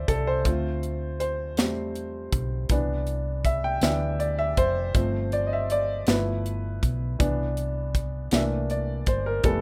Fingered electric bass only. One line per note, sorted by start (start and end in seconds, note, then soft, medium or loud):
0.08 0.45 C2 medium
0.45 1.57 D2 medium
1.57 2.29 E2 medium
2.33 2.67 B1 medium
2.69 3.78 C2 loud
3.81 4.53 D2 medium
4.58 4.92 F1 medium
4.95 6.03 G1 medium
6.07 6.78 G1 medium
6.83 7.17 B1 medium
7.20 8.28 C2 medium
8.32 9.03 C2 medium
9.07 9.41 G1 medium
9.44 9.61 F1 medium